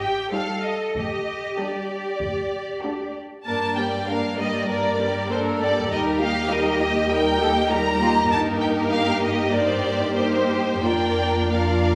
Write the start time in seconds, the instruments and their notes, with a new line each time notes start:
Already playing: double bass section G1, cello section G4
0.01 violin section G5
0.33 viola section G3 D#4, violin section G4 C5 F5, cello section A4
0.64 violin section D#5
0.96 double bass section D2, cello section G4, violin section D#5
1.58 viola section G3 D4, violin section G4 A4 D5
2.22 double bass section D2
2.83 viola section A3 D4, violin section F#4 A4
3.46 double bass section G2, viola section A#3 D4, violin section A#4 A5
3.77 viola section G3 A#3, violin section G4 D5 G5
4.09 viola section A#3 D4, violin section A#4 F5
4.38 viola section G3 A#3, violin section G4 D5 D#5
4.68 viola section A#3 D4, violin section A#4 D5, cello section A#4
4.99 viola section G3 A#3, violin section G4 D5, cello section A#4
5.29 viola section A#3 D4, cello section A4, violin section A#4 C5
5.61 viola section G3 A#3, violin section G4 D5
5.90 double bass section D#2, viola section G3 D#4, cello section G4, violin section A#4 D#5
6.21 viola section A#3 G4, violin section G4 D#5 F5
6.50 viola section G3 D#4, violin section A#4 D#5
6.81 viola section A#3 G4, violin section G4 D#5
7.10 viola section G3 D#4, violin section A#4 G5, cello section A#4
7.40 viola section A#3 G4, violin section G4 D#5, cello section A4
7.71 viola section G3 D#4, cello section G4, violin section A#4 A#5
8.01 viola section A#3 G4, cello section F4, violin section G4 D#5
8.30 double bass section G2, viola section A#3 D#4, cello section D#4, violin section G4 A#4 A5
8.61 violin section G5
8.91 cello section G4, violin section F5
9.24 violin section D#5
9.53 viola section A#3 D#4, violin section G4 C5 D5, cello section A#4
9.85 cello section G4
10.16 viola section A#3 D#4, violin section G4 C5
10.84 double bass section F2, viola section A#3 F4, cello section D4, violin section A#4 D5 G5
11.50 viola section A#3 F4, violin section A#4 D5 F5